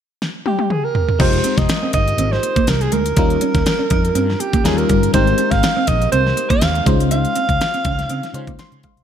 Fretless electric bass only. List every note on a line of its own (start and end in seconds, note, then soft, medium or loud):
1.20 1.39 F1 medium
1.57 1.66 F1 medium
1.94 2.13 G1 medium
2.18 2.37 G#1 medium
2.68 2.87 C2 medium
2.92 3.11 D2 medium
3.17 3.36 D#2 loud
3.55 3.63 D#2 medium
3.91 4.10 F2 medium
4.15 4.34 G2 medium
4.64 4.83 D#2 medium
4.90 5.09 G1 medium
5.14 5.33 G#1 loud
5.52 5.60 G#1 medium
5.88 6.07 A#1 medium
6.12 6.31 C2 medium
6.62 6.81 D#2 medium
6.86 7.24 C#2 medium
7.49 7.58 C#2 medium
7.85 8.04 C#2 medium
8.09 8.20 C#3 medium
8.34 8.44 C#3 medium
8.47 8.56 C#2 medium
8.72 8.81 C#3 medium
8.97 9.04 C2 medium